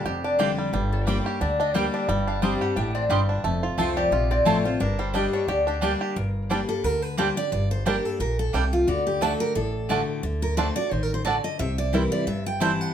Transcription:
Already playing: five-string banjo G3 D4
0.05 upright bass F1, steel-string acoustic guitar F2, five-string banjo G4, resonator guitar played with a steel bar G5
0.24 five-string banjo D4, resonator guitar played with a steel bar D5
0.39 steel-string acoustic guitar D3 G3 D4 G4, mandolin A#3 F4 D5 G5, five-string banjo G4
0.58 five-string banjo G3
0.73 upright bass G1, steel-string acoustic guitar G2, five-string banjo G3
0.92 resonator guitar played with a steel bar A4
1.07 steel-string acoustic guitar G3 A#3 D4 G4, five-string banjo G3, mandolin A#3 G4 D5 G5, resonator guitar played with a steel bar C5
1.26 five-string banjo G4, resonator guitar played with a steel bar C#5
1.41 upright bass D2, steel-string acoustic guitar D3, five-string banjo D4, resonator guitar played with a steel bar D5
1.60 five-string banjo D4, resonator guitar played with a steel bar D#5
1.74 steel-string acoustic guitar G3 A#3 D4 G4, five-string banjo G3, mandolin A#3 G4 D5 G5, resonator guitar played with a steel bar C5
1.94 five-string banjo D4, resonator guitar played with a steel bar D5
2.08 upright bass G1, steel-string acoustic guitar G2, five-string banjo G3, resonator guitar played with a steel bar D#5
2.27 five-string banjo D4, resonator guitar played with a steel bar F5
2.42 steel-string acoustic guitar G3 C4 D4 G4, five-string banjo G3, mandolin D4 G4 D#5 C6, resonator guitar played with a steel bar A5
2.61 five-string banjo G4, resonator guitar played with a steel bar F#5
2.76 upright bass A1, steel-string acoustic guitar A2, five-string banjo D4, resonator guitar played with a steel bar G5
2.95 five-string banjo C4, resonator guitar played with a steel bar D5
3.09 upright bass G1, steel-string acoustic guitar G2, five-string banjo G3, mandolin D4 G4 D#5 C6
3.29 five-string banjo D4
3.44 upright bass F1, steel-string acoustic guitar F2, five-string banjo A3
3.63 five-string banjo F4
3.78 upright bass C2, steel-string acoustic guitar F3 A3 C4 F4, five-string banjo A3, mandolin C4 F4 C5 A5, resonator guitar played with a steel bar F5
3.97 five-string banjo G4, resonator guitar played with a steel bar D5
4.11 upright bass A#1, steel-string acoustic guitar C3, five-string banjo F4, resonator guitar played with a steel bar D#5
4.31 five-string banjo C4, resonator guitar played with a steel bar D5
4.45 upright bass A1, steel-string acoustic guitar F3 A3 C4 F4, five-string banjo A3, mandolin C4 F4 C5 A5, resonator guitar played with a steel bar C#5
4.64 steel-string acoustic guitar C4 F4, five-string banjo F4, resonator guitar played with a steel bar C5
4.80 upright bass G1, steel-string acoustic guitar G2, five-string banjo D4, resonator guitar played with a steel bar A#4
4.99 five-string banjo G3, resonator guitar played with a steel bar C5
5.13 steel-string acoustic guitar G3 A#3 D4 G4, mandolin A#3 G4 D5 G5, five-string banjo D4, resonator guitar played with a steel bar D#5
5.33 five-string banjo D4, resonator guitar played with a steel bar C#5
5.48 upright bass D2, steel-string acoustic guitar D3, five-string banjo G4, resonator guitar played with a steel bar D5
5.67 five-string banjo D4, resonator guitar played with a steel bar G4
5.81 steel-string acoustic guitar G3 A#3 D4 G4, mandolin A#3 G4 D5 G5, five-string banjo D4
6.01 five-string banjo G4
6.16 upright bass G1, steel-string acoustic guitar G2, resonator guitar played with a steel bar A#4
6.50 steel-string acoustic guitar G3 A#3 D4 G4, five-string banjo G3 D4, mandolin A#3 G4 D5 G5
6.69 steel-string acoustic guitar A4
6.84 upright bass D2, steel-string acoustic guitar D3 A#4
7.02 steel-string acoustic guitar B4
7.17 steel-string acoustic guitar G3 A#3 D4 G4 C5, five-string banjo G3 D4, mandolin A#3 G4 D5 G5
7.36 steel-string acoustic guitar D4 G4 D5
7.52 upright bass G1, steel-string acoustic guitar G2 D5
7.71 steel-string acoustic guitar C5
7.85 steel-string acoustic guitar G3 A#3 D4 G4 A#4, five-string banjo G3 D4, mandolin A#3 G4 D5 G5
8.05 steel-string acoustic guitar A4
8.20 upright bass A#1, steel-string acoustic guitar A#2 A#4
8.39 steel-string acoustic guitar A4
8.53 upright bass C2, steel-string acoustic guitar C3 G4, five-string banjo G3 D4, mandolin A#3 G4 D5 G5
8.73 steel-string acoustic guitar F4
8.87 upright bass D2, steel-string acoustic guitar D3 F#4, resonator guitar played with a steel bar D5
9.07 steel-string acoustic guitar G4
9.21 steel-string acoustic guitar D3 A3 D4 F#4 A4, mandolin A3 F#4 D5 A5, five-string banjo A3 D4
9.40 steel-string acoustic guitar A#4
9.55 upright bass A1, steel-string acoustic guitar A2 A4
9.89 steel-string acoustic guitar D3 A3 D4 F#4, mandolin A3 F#4 D5 A5, five-string banjo A3 D4
10.23 upright bass D2, steel-string acoustic guitar D3
10.42 steel-string acoustic guitar A#4
10.57 steel-string acoustic guitar D3 A3 D4 F#4 C5, mandolin A3 F#4 D5 A5, five-string banjo A3 D4
10.76 steel-string acoustic guitar D4 F#4 D5
10.91 upright bass A1, steel-string acoustic guitar D#3 C5
11.03 steel-string acoustic guitar A#4
11.14 steel-string acoustic guitar C5
11.25 steel-string acoustic guitar D3 D5, mandolin A3 F#4 D5 A5, five-string banjo A3 D4
11.44 steel-string acoustic guitar D#5
11.59 upright bass C2, steel-string acoustic guitar C3 E5, resonator guitar played with a steel bar C5
11.78 steel-string acoustic guitar D5
11.93 steel-string acoustic guitar E3 G3 C4 E4 A#4, five-string banjo G3 C4 E4, mandolin C4 E4 C5 G5
12.12 steel-string acoustic guitar D5
12.27 upright bass G1, steel-string acoustic guitar G2 E5
12.46 steel-string acoustic guitar G5
12.60 steel-string acoustic guitar E3 G3 C4 E4 A5, five-string banjo G3 C4 E4, mandolin C4 E4 C5 G5
12.81 steel-string acoustic guitar F#5

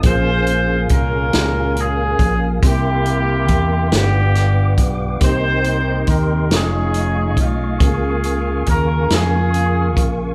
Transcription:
0.03 fingered electric bass A#1, tine electric piano A#2 A#3 C#4 F4 G#4, horn section F4 G#4 C5, tonewheel organ A#4 F5 G#5, kick, closed hi-hat
0.47 closed hi-hat
0.89 fingered electric bass C2, horn section C#4 F4 A#4, kick, closed hi-hat
1.33 fingered electric bass C#2, tine electric piano A#3 C#4 F4 G4, snare, closed hi-hat
1.42 tine electric piano G#4
1.77 horn section C#4 F4 G#4, closed hi-hat
2.19 fingered electric bass A#1, kick, closed hi-hat
2.62 fingered electric bass C2, tine electric piano C3 A#3 C4 E4 G4, horn section A#3 E4 G4, tonewheel organ E5 G5 C6, kick, closed hi-hat
3.06 closed hi-hat
3.48 fingered electric bass E2, kick, closed hi-hat
3.91 fingered electric bass G1, tine electric piano G2 A3 D4 F4 G4, horn section B3 D4 G4, tonewheel organ B4 F5 D6, snare, closed hi-hat
3.99 tine electric piano B3
4.35 snare, closed hi-hat
4.78 fingered electric bass B1, kick, closed hi-hat
5.20 fingered electric bass C2, tine electric piano C3 A#3 C4 D#4 G4, horn section D#4 G4 C5, tonewheel organ A#4 D#5 C6, kick, closed hi-hat
5.64 closed hi-hat
6.07 fingered electric bass D#2, horn section A#4, kick, closed hi-hat
6.50 fingered electric bass F1, tonewheel organ A3 F5 C#6, tine electric piano A3 C#4 D#4 F4, horn section C#4 D#4 G#4, snare, closed hi-hat
6.94 closed hi-hat
7.37 fingered electric bass B1, horn section F4 G#4, kick, closed hi-hat
7.79 fingered electric bass C#2, tine electric piano C#3 A#3 C#4 F4 G4, tonewheel organ A#4 F5 G#5, kick, closed hi-hat
7.89 tine electric piano G#4
8.24 closed hi-hat
8.66 fingered electric bass D#2, horn section A#4, kick, closed hi-hat
9.10 fingered electric bass F2, tine electric piano A#3 C#4 F4 A#4, horn section F4 G#4, snare, closed hi-hat
9.54 closed hi-hat
9.97 fingered electric bass A#1, kick, closed hi-hat

